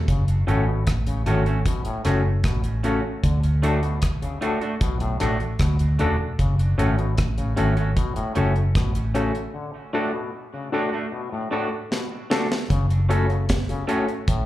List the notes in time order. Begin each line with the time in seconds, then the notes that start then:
0.08 F#1 C#3, kick, closed hi-hat
0.28 closed hi-hat
0.47 G#1 A2 A3 C#4 F#4 A4, closed hi-hat
0.68 B2
0.87 A1, kick, cross-stick, closed hi-hat
1.07 C#3, closed hi-hat
1.26 G#1 A2 A3 C#4 F#4 A4, closed hi-hat
1.46 A3 C#4 F#4, closed hi-hat
1.66 B2, kick, closed hi-hat
1.85 A2, closed hi-hat
2.05 F#1 A2 A3 C#4 F#4 A4, cross-stick, closed hi-hat
2.44 A1 B2, kick, cross-stick, closed hi-hat
2.64 closed hi-hat
2.83 C#3 A3 C#4 F#4 A4, closed hi-hat
3.23 D2 D3, kick, closed hi-hat
3.43 closed hi-hat
3.62 A2 A3 D4 F#4 A4, closed hi-hat
3.83 B2, closed hi-hat
4.02 kick, cross-stick, closed hi-hat
4.22 C#3, closed hi-hat
4.41 A2 A3 D4 F#4 A4, closed hi-hat
4.61 A3 D4 F#4, closed hi-hat
4.81 B1 B2, kick, closed hi-hat
5.00 A2, closed hi-hat
5.20 A1 A2 A3 D4 F#4 A4, cross-stick, closed hi-hat
5.40 closed hi-hat
5.59 D2 B2, kick, cross-stick, closed hi-hat
5.79 closed hi-hat
5.99 E1 C#3 A3 D4 F#4 A4, closed hi-hat
6.39 F#1 C#3, kick, closed hi-hat
6.59 closed hi-hat
6.78 G#1 A2 A3 C#4 F#4 A4, closed hi-hat
6.98 B2, closed hi-hat
7.18 A1, kick, cross-stick, closed hi-hat
7.38 C#3, closed hi-hat
7.56 G#1 A2 A3 C#4 F#4 A4, closed hi-hat
7.77 A3 C#4 F#4, closed hi-hat
7.96 B2, kick, closed hi-hat
8.16 A2, closed hi-hat
8.35 F#1 A2 A3 C#4 F#4 A4, closed hi-hat
8.56 closed hi-hat
8.75 A1 B2, kick, cross-stick, closed hi-hat
8.95 closed hi-hat
9.14 C#3 A3 C#4 F#4 A4, closed hi-hat
9.35 closed hi-hat
9.54 D3
9.93 A2 A3 D4 F#4 A4
10.14 B2
10.54 C#3
10.72 A2 A3 D4 F#4 A4
10.93 A3 D4 F#4
11.12 B2
11.32 A2
11.51 A2 A3 D4 F#4 A4
11.91 B2, snare
12.30 C#3 A3 D4 F#4 A4, snare
12.52 snare
12.70 F#1 C#3, kick, closed hi-hat
12.90 closed hi-hat
13.09 B2 A3 C#4 F#4 A4, closed hi-hat
13.29 C#3, closed hi-hat
13.49 kick, snare, closed hi-hat
13.69 C#3 F#4 A4, closed hi-hat
13.87 A2 A3 C#4 F#4 A4, closed hi-hat
14.08 closed hi-hat
14.28 A1 A2, kick, closed hi-hat